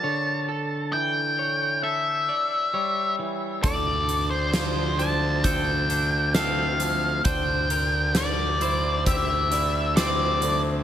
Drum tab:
HH |--------|xxxxxxxx|xxxxxxxx|
SD |--------|--o---o-|--o---o-|
BD |--------|o---o---|o---o---|